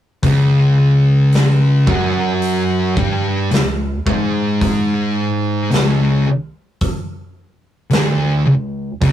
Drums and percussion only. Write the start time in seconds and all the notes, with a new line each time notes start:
0.23 kick, open hi-hat
1.33 snare, open hi-hat
1.87 kick
2.42 open hi-hat
2.97 kick
3.51 snare, open hi-hat
4.07 kick
4.61 kick, open hi-hat
5.72 snare, open hi-hat
6.81 kick, open hi-hat
7.91 snare, open hi-hat
9.02 kick, open hi-hat